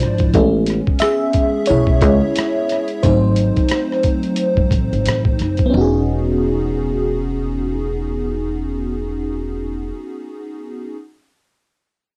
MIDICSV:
0, 0, Header, 1, 5, 480
1, 0, Start_track
1, 0, Key_signature, 4, "major"
1, 0, Tempo, 674157
1, 239, Time_signature, 4, 2, 24, 8
1, 8664, End_track
2, 0, Start_track
2, 0, Title_t, "FM electric piano"
2, 0, Program_c, 0, 5
2, 0, Control_c, 0, 64, 127
2, 0, Note_on_c, 0, 53, 43
2, 0, Note_on_c, 0, 56, 39
2, 0, Note_on_c, 0, 62, 53
2, 0, Note_on_c, 0, 65, 50
2, 0, Note_on_c, 0, 74, 62
2, 241, Note_off_c, 0, 56, 0
2, 241, Note_on_c, 0, 56, 48
2, 243, Note_on_c, 0, 59, 48
2, 248, Control_c, 0, 64, 0
2, 249, Note_on_c, 0, 61, 60
2, 250, Note_off_c, 0, 62, 0
2, 251, Note_off_c, 0, 74, 0
2, 253, Note_off_c, 0, 53, 0
2, 254, Note_off_c, 0, 65, 0
2, 380, Control_c, 0, 64, 127
2, 575, Note_off_c, 0, 56, 0
2, 576, Note_off_c, 0, 59, 0
2, 579, Note_off_c, 0, 61, 0
2, 712, Note_on_c, 0, 76, 88
2, 730, Note_on_c, 0, 68, 67
2, 1176, Note_off_c, 0, 68, 0
2, 1191, Note_on_c, 0, 73, 77
2, 1208, Note_on_c, 0, 64, 56
2, 1210, Note_off_c, 0, 76, 0
2, 2135, Note_off_c, 0, 64, 0
2, 2156, Note_on_c, 0, 72, 75
2, 2161, Note_on_c, 0, 54, 50
2, 2164, Note_on_c, 0, 57, 43
2, 2168, Note_on_c, 0, 60, 52
2, 2169, Control_c, 0, 64, 0
2, 2171, Note_on_c, 0, 63, 64
2, 2184, Note_off_c, 0, 73, 0
2, 2275, Control_c, 0, 64, 127
2, 2851, Note_off_c, 0, 54, 0
2, 2853, Note_off_c, 0, 57, 0
2, 2855, Note_off_c, 0, 60, 0
2, 3809, Note_off_c, 0, 72, 0
2, 3817, Note_off_c, 0, 63, 0
2, 4029, Note_on_c, 0, 59, 74
2, 4057, Note_on_c, 0, 61, 62
2, 4082, Note_on_c, 0, 63, 58
2, 4087, Control_c, 0, 64, 0
2, 4110, Note_on_c, 0, 66, 58
2, 4136, Note_on_c, 0, 68, 68
2, 4220, Control_c, 0, 64, 127
2, 7013, Note_off_c, 0, 59, 0
2, 7027, Note_off_c, 0, 61, 0
2, 7040, Note_off_c, 0, 63, 0
2, 7054, Note_off_c, 0, 66, 0
2, 7067, Note_off_c, 0, 68, 0
2, 7787, Control_c, 0, 64, 0
2, 8664, End_track
3, 0, Start_track
3, 0, Title_t, "Upright bass"
3, 0, Program_c, 1, 32
3, 13, Note_on_c, 1, 32, 67
3, 245, Note_off_c, 1, 32, 0
3, 245, Note_on_c, 1, 33, 95
3, 562, Note_off_c, 1, 33, 0
3, 1211, Note_on_c, 1, 35, 77
3, 1436, Note_off_c, 1, 35, 0
3, 1436, Note_on_c, 1, 37, 81
3, 1555, Note_off_c, 1, 37, 0
3, 2165, Note_on_c, 1, 32, 82
3, 2482, Note_off_c, 1, 32, 0
3, 3258, Note_on_c, 1, 44, 70
3, 3342, Note_off_c, 1, 44, 0
3, 3359, Note_on_c, 1, 33, 75
3, 3477, Note_off_c, 1, 33, 0
3, 3508, Note_on_c, 1, 32, 61
3, 3588, Note_off_c, 1, 32, 0
3, 3605, Note_on_c, 1, 33, 70
3, 3804, Note_off_c, 1, 33, 0
3, 3847, Note_on_c, 1, 30, 59
3, 3962, Note_off_c, 1, 30, 0
3, 4087, Note_on_c, 1, 28, 82
3, 7042, Note_off_c, 1, 28, 0
3, 8664, End_track
4, 0, Start_track
4, 0, Title_t, "Muted upright bass strokes"
4, 628, Note_on_c, 9, 29, 37
4, 699, Note_off_c, 9, 29, 0
4, 2547, Note_on_c, 9, 29, 37
4, 2618, Note_off_c, 9, 29, 0
4, 8664, End_track
5, 0, Start_track
5, 0, Title_t, "Drums"
5, 0, Note_on_c, 9, 42, 53
5, 20, Note_on_c, 9, 37, 30
5, 71, Note_off_c, 9, 42, 0
5, 91, Note_off_c, 9, 37, 0
5, 131, Note_on_c, 9, 42, 31
5, 142, Note_on_c, 9, 36, 78
5, 202, Note_off_c, 9, 42, 0
5, 213, Note_off_c, 9, 36, 0
5, 239, Note_on_c, 9, 36, 105
5, 239, Note_on_c, 9, 42, 65
5, 310, Note_off_c, 9, 42, 0
5, 311, Note_off_c, 9, 36, 0
5, 473, Note_on_c, 9, 42, 62
5, 499, Note_on_c, 9, 37, 28
5, 545, Note_off_c, 9, 42, 0
5, 571, Note_off_c, 9, 37, 0
5, 622, Note_on_c, 9, 36, 76
5, 693, Note_off_c, 9, 36, 0
5, 705, Note_on_c, 9, 42, 74
5, 725, Note_on_c, 9, 37, 98
5, 776, Note_off_c, 9, 42, 0
5, 797, Note_off_c, 9, 37, 0
5, 950, Note_on_c, 9, 42, 56
5, 956, Note_on_c, 9, 36, 72
5, 1021, Note_off_c, 9, 42, 0
5, 1028, Note_off_c, 9, 36, 0
5, 1181, Note_on_c, 9, 42, 73
5, 1252, Note_off_c, 9, 42, 0
5, 1331, Note_on_c, 9, 36, 80
5, 1402, Note_off_c, 9, 36, 0
5, 1431, Note_on_c, 9, 36, 67
5, 1435, Note_on_c, 9, 42, 57
5, 1502, Note_off_c, 9, 36, 0
5, 1506, Note_off_c, 9, 42, 0
5, 1678, Note_on_c, 9, 42, 81
5, 1698, Note_on_c, 9, 37, 84
5, 1749, Note_off_c, 9, 42, 0
5, 1770, Note_off_c, 9, 37, 0
5, 1917, Note_on_c, 9, 42, 56
5, 1937, Note_on_c, 9, 37, 31
5, 1988, Note_off_c, 9, 42, 0
5, 2008, Note_off_c, 9, 37, 0
5, 2049, Note_on_c, 9, 42, 30
5, 2120, Note_off_c, 9, 42, 0
5, 2159, Note_on_c, 9, 36, 88
5, 2159, Note_on_c, 9, 42, 59
5, 2230, Note_off_c, 9, 36, 0
5, 2230, Note_off_c, 9, 42, 0
5, 2393, Note_on_c, 9, 42, 60
5, 2464, Note_off_c, 9, 42, 0
5, 2538, Note_on_c, 9, 42, 28
5, 2541, Note_on_c, 9, 36, 75
5, 2609, Note_off_c, 9, 42, 0
5, 2613, Note_off_c, 9, 36, 0
5, 2624, Note_on_c, 9, 42, 73
5, 2645, Note_on_c, 9, 37, 90
5, 2695, Note_off_c, 9, 42, 0
5, 2716, Note_off_c, 9, 37, 0
5, 2793, Note_on_c, 9, 37, 28
5, 2864, Note_off_c, 9, 37, 0
5, 2871, Note_on_c, 9, 42, 51
5, 2876, Note_on_c, 9, 36, 73
5, 2942, Note_off_c, 9, 42, 0
5, 2948, Note_off_c, 9, 36, 0
5, 3012, Note_on_c, 9, 42, 30
5, 3083, Note_off_c, 9, 42, 0
5, 3105, Note_on_c, 9, 42, 71
5, 3176, Note_off_c, 9, 42, 0
5, 3253, Note_on_c, 9, 36, 77
5, 3324, Note_off_c, 9, 36, 0
5, 3353, Note_on_c, 9, 36, 67
5, 3359, Note_on_c, 9, 42, 57
5, 3424, Note_off_c, 9, 36, 0
5, 3431, Note_off_c, 9, 42, 0
5, 3511, Note_on_c, 9, 42, 28
5, 3582, Note_off_c, 9, 42, 0
5, 3600, Note_on_c, 9, 42, 73
5, 3621, Note_on_c, 9, 37, 86
5, 3671, Note_off_c, 9, 42, 0
5, 3692, Note_off_c, 9, 37, 0
5, 3739, Note_on_c, 9, 36, 77
5, 3810, Note_off_c, 9, 36, 0
5, 3838, Note_on_c, 9, 42, 52
5, 3858, Note_on_c, 9, 37, 30
5, 3909, Note_off_c, 9, 42, 0
5, 3929, Note_off_c, 9, 37, 0
5, 3968, Note_on_c, 9, 42, 32
5, 3981, Note_on_c, 9, 36, 71
5, 4039, Note_off_c, 9, 42, 0
5, 4052, Note_off_c, 9, 36, 0
5, 8664, End_track
0, 0, End_of_file